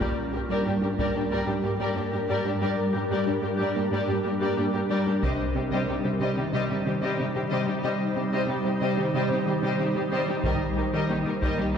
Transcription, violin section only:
0.01 0.16 A#4 soft
0.01 0.16 D5 soft
0.34 0.41 G4 soft
0.34 0.40 A#4 soft
0.50 0.65 A#4 soft
0.50 0.65 D5 soft
0.66 0.73 D4 soft
0.66 0.73 G4 soft
0.82 0.89 G4 soft
0.82 0.89 A#4 soft
0.99 1.14 A#4 soft
0.99 1.14 D5 soft
1.15 1.22 D4 soft
1.15 1.22 G4 soft
1.31 1.47 A#4 soft
1.31 1.46 D5 soft
1.48 1.55 D4 soft
1.48 1.54 G4 soft
1.64 1.71 G4 soft
1.64 1.71 A#4 soft
1.80 1.96 A#4 soft
1.80 1.95 D5 soft
1.96 2.03 D4 soft
1.96 2.03 G4 soft
2.13 2.20 G4 soft
2.13 2.20 A#4 soft
2.29 2.44 A#4 soft
2.29 2.45 D5 soft
2.46 2.52 D4 soft
2.46 2.52 G4 soft
2.62 2.77 A#4 soft
2.62 2.77 D5 soft
2.95 3.02 G4 soft
2.95 3.02 A#4 soft
3.11 3.26 A#4 soft
3.11 3.26 D5 soft
3.28 3.34 D4 soft
3.28 3.34 G4 soft
3.44 3.51 G4 soft
3.44 3.51 A#4 soft
3.61 3.76 A#4 soft
3.61 3.76 D5 soft
3.77 3.84 D4 soft
3.77 3.84 G4 soft
3.93 4.08 A#4 soft
3.93 4.08 D5 soft
4.10 4.16 D4 soft
4.10 4.16 G4 soft
4.26 4.32 G4 soft
4.26 4.32 A#4 soft
4.42 4.57 A#4 soft
4.42 4.57 D5 soft
4.58 4.65 D4 soft
4.58 4.65 G4 soft
4.75 4.81 G4 soft
4.75 4.81 A#4 soft
4.90 5.06 A#4 medium
4.90 5.06 D5 medium
5.07 5.14 D4 soft
5.07 5.14 G4 soft
5.23 5.38 C5 soft
5.23 5.38 D#5 soft
5.56 5.62 G4 soft
5.56 5.62 C5 soft
5.71 5.87 C5 soft
5.71 5.87 D#5 soft
5.88 5.94 D#4 soft
5.88 5.94 G4 soft
6.04 6.11 G4 soft
6.04 6.11 C5 soft
6.20 6.36 C5 soft
6.20 6.36 D#5 soft
6.37 6.44 D#4 soft
6.37 6.44 G4 soft
6.53 6.68 C5 soft
6.53 6.68 D#5 soft
6.69 6.76 D#4 soft
6.69 6.76 G4 soft
6.86 6.92 G4 soft
6.86 6.92 C5 soft
7.02 7.17 C5 soft
7.02 7.17 D#5 soft
7.18 7.25 D#4 soft
7.18 7.25 G4 soft
7.35 7.41 G4 soft
7.35 7.42 C5 soft
7.50 7.66 C5 medium
7.50 7.66 D#5 medium
7.67 7.74 D#4 soft
7.67 7.74 G4 soft
7.83 7.99 C5 soft
7.83 7.99 D#5 medium
8.16 8.22 G4 soft
8.16 8.22 C5 soft
8.32 8.48 C5 soft
8.32 8.48 D#5 medium
8.48 8.55 D#4 soft
8.48 8.55 G4 soft
8.64 8.71 G4 soft
8.64 8.71 C5 soft
8.81 8.97 C5 soft
8.81 8.97 D#5 soft
8.98 9.05 D#4 soft
8.98 9.04 G4 soft
9.15 9.30 C5 soft
9.15 9.30 D#5 soft
9.31 9.38 D#4 soft
9.31 9.38 G4 soft
9.47 9.54 G4 soft
9.47 9.54 C5 soft
9.64 9.79 C5 soft
9.64 9.79 D#5 medium
9.80 9.86 D#4 soft
9.80 9.86 G4 soft
9.96 10.02 G4 soft
9.96 10.02 C5 soft
10.12 10.27 C5 medium
10.12 10.27 D#5 medium
10.29 10.35 D#4 soft
10.29 10.35 G4 soft
10.45 10.60 A#4 medium
10.45 10.60 D#5 medium
10.77 10.84 G4 soft
10.77 10.84 A#4 soft
10.94 11.09 A#4 medium
10.94 11.09 D#5 medium
11.10 11.17 D#4 soft
11.10 11.17 G4 soft
11.27 11.33 G4 soft
11.27 11.33 A#4 soft
11.43 11.58 A#4 medium
11.43 11.58 D#5 medium
11.60 11.66 D#4 soft
11.60 11.66 G4 soft

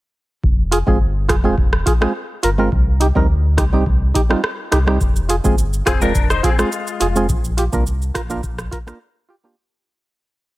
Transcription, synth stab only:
0.71 0.78 F4 medium
0.71 0.79 G#4 medium
0.87 0.98 G#3 medium
0.87 0.98 C4 medium
0.87 0.98 F4 medium
0.87 0.98 G#4 medium
1.29 1.35 F4 medium
1.29 1.36 G#4 medium
1.44 1.55 G#3 medium
1.44 1.55 C4 medium
1.44 1.55 F4 medium
1.44 1.56 G#4 medium
1.86 1.92 F4 loud
1.86 1.93 G#4 loud
2.01 2.12 G#3 medium
2.01 2.12 C4 medium
2.01 2.13 F4 medium
2.01 2.13 G#4 medium
2.43 2.49 F4 medium
2.43 2.50 A#4 medium
2.58 2.69 G#3 medium
2.58 2.69 C4 medium
2.58 2.70 F4 medium
2.58 2.70 A#4 medium
3.00 3.07 D#4 medium
3.00 3.07 G4 medium
3.15 3.26 G3 medium
3.15 3.27 C4 medium
3.15 3.27 D#4 medium
3.15 3.27 A#4 medium
3.57 3.64 D#4 medium
3.57 3.64 G4 medium
3.73 3.84 G3 medium
3.73 3.84 C4 medium
3.73 3.84 D#4 medium
3.73 3.84 G4 medium
4.14 4.21 D#4 medium
4.14 4.22 G4 loud
4.29 4.41 G3 medium
4.29 4.41 C4 medium
4.29 4.41 D#4 medium
4.29 4.41 F4 medium
4.72 4.78 D#4 medium
4.72 4.79 G4 medium
4.87 4.98 G3 medium
4.87 4.98 C4 medium
4.87 4.98 D#4 medium
4.87 4.99 G4 medium
5.29 5.35 F4 medium
5.29 5.36 G#4 medium
5.44 5.55 G#3 medium
5.44 5.55 C4 medium
5.44 5.55 F4 medium
5.44 5.56 G#4 medium
5.86 5.92 F4 medium
5.86 5.93 G#4 loud
6.01 6.12 G#3 medium
6.01 6.12 C4 medium
6.01 6.13 F4 medium
6.01 6.13 A#4 medium
6.43 6.49 F4 medium
6.43 6.50 G#4 loud
6.58 6.69 G#3 medium
6.58 6.70 C4 medium
6.58 6.70 F4 medium
6.58 6.70 G#4 medium
7.00 7.07 F4 medium
7.00 7.07 G#4 medium
7.16 7.27 G#3 medium
7.16 7.27 C4 medium
7.16 7.27 F4 medium
7.16 7.27 G#4 medium
7.57 7.64 F4 medium
7.57 7.64 G4 loud
7.72 7.84 A#3 medium
7.72 7.84 D4 medium
7.72 7.84 F4 medium
7.72 7.84 A#4 medium
8.14 8.21 F4 medium
8.14 8.22 A#4 loud
8.29 8.41 A#3 medium
8.29 8.41 D4 medium
8.29 8.41 F4 medium
8.29 8.41 A#4 medium
8.71 8.78 F4 medium
8.71 8.79 A#4 loud
8.87 8.98 A#3 medium
8.87 8.98 D4 medium
8.87 8.98 F4 medium
8.87 8.98 A#4 medium
9.29 9.35 F4 medium
9.29 9.36 G4 medium
9.44 9.55 A#3 medium
9.44 9.55 D4 medium
9.44 9.55 F4 medium
9.44 9.56 G4 medium

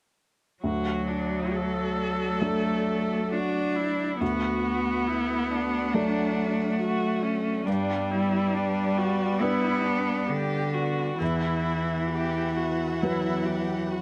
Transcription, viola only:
0.63 1.09 F#4 soft
1.08 1.54 D4 soft
1.53 3.32 A4 medium
3.33 3.78 F#4 soft
3.76 4.22 E4 soft
4.20 5.08 F#4 medium
5.07 5.52 E4 medium
5.51 6.79 D4 medium
6.79 7.24 F#4 medium
7.23 7.67 C#4 medium
7.66 8.12 D4 medium
8.11 8.55 E4 medium
8.54 8.99 D4 medium
8.97 9.42 F#4 medium
9.40 9.86 E4 medium
9.85 10.28 D4 medium
10.29 10.75 G4 medium
10.74 11.20 F#4 medium
11.19 12.02 E4 medium
12.10 12.58 G4 medium
12.56 13.04 F#4 soft
13.02 13.47 E4 medium
13.46 13.93 G4 soft
13.91 14.02 F#4 soft

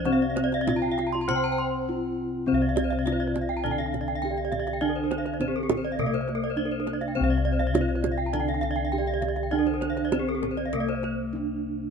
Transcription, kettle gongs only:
0.00 1.27 C2 loud
0.06 1.85 C4 medium
0.68 0.76 D4 soft
1.29 3.03 C3 medium
1.89 1.97 D4 soft
2.47 4.19 C4 medium
2.52 5.97 C2 medium
3.06 3.14 D4 soft
4.23 4.31 D4 soft
4.82 5.39 D4 medium
5.40 5.48 D4 soft
5.99 7.70 C3 medium
6.57 6.65 D4 soft
7.16 8.89 C4 medium
7.21 10.72 C2 loud
7.75 7.83 D4 medium
8.93 9.01 D4 soft
9.53 10.12 D4 medium
10.13 10.21 D4 medium
10.73 11.90 C3 soft
11.35 11.43 D4 soft

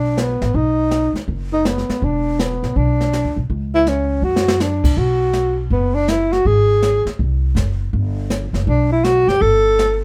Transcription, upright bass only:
0.00 0.38 B1 medium
0.41 0.53 A1 medium
0.54 1.11 B1 medium
1.14 muted upright bass stroke soft
1.28 1.85 F#1 medium
1.89 muted upright bass stroke soft
2.02 2.59 E1 medium
2.63 2.75 B1 medium
2.76 3.22 B1 medium
3.24 3.36 D2 soft
3.36 3.48 B1 medium
3.50 4.20 C#2 medium
4.22 4.80 F#2 medium
4.84 4.96 C2 medium
4.97 5.67 B1 medium
5.70 6.41 F#1 medium
6.45 7.02 G#1 medium
7.05 muted upright bass stroke soft
7.19 7.53 C2 medium
7.55 7.90 F#1 medium
7.93 8.50 G1 medium
8.53 8.65 F#1 medium
8.67 9.24 B1 medium
9.27 9.39 F#1 medium
9.41 10.04 G1 medium

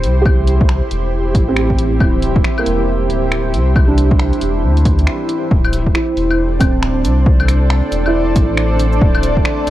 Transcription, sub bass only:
0.04 0.81 C2 medium
0.91 1.34 E1 loud
1.35 2.00 A1 medium
2.01 2.43 D1 loud
2.66 3.09 E1 loud
3.10 3.56 D1 medium
3.54 4.32 C2 medium
4.41 4.65 E1 loud
4.63 5.07 D2 medium
5.51 5.94 D1 loud
6.16 6.59 E1 loud
6.61 7.06 D1 medium
7.05 7.82 C2 medium
7.92 8.35 E1 loud
8.36 9.00 A1 loud
9.02 9.44 D1 medium

